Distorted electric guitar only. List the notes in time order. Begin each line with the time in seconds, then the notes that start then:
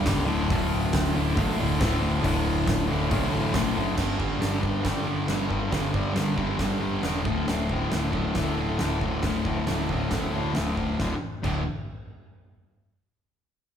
0.04 G2 D3 G3
0.25 D2 A2 D3
0.49 D2 A2 D3
1.15 A2 D3
1.36 D2 A2 D3
1.58 A2 D3
1.79 D2 A2 D3
1.99 A2 D3
2.22 D2 A2 D3
2.87 A2 D3
3.09 D2 A2 D3
3.31 A2 D3
3.53 D2 A2 D3
3.74 A2 D3
3.95 G2 D3 G3
4.17 D3 G3
4.38 G2 D3 G3
4.59 G2 D3 G3
4.82 G2 D3 G3
5.05 D3 G3
5.28 G2 D3 G3
5.49 D3 G3
5.69 G2 D3 G3
5.93 D3 G3
6.13 G2 D3 G3
6.35 G2 D3 G3
6.57 G2 D3 G3
6.79 D3 G3
7.01 G2 D3 G3
7.24 D2 A2 D3
7.47 D2 A2 D3
7.69 A2 D3
7.90 D2 A2 D3
8.12 D2 A2 D3
8.33 D2 A2 D3
8.57 A2 D3
8.78 D2 A2 D3
9.01 A2 D3
9.24 D2 A2 D3
9.46 A2 D3
9.67 D2 A2 D3
9.90 D2 A2 D3
10.10 D2 A2 D3
10.31 A2 D3
10.54 D2 A2 D3
10.76 A2 D3
11.00 D2 A2 D3
11.43 D2 A2 D3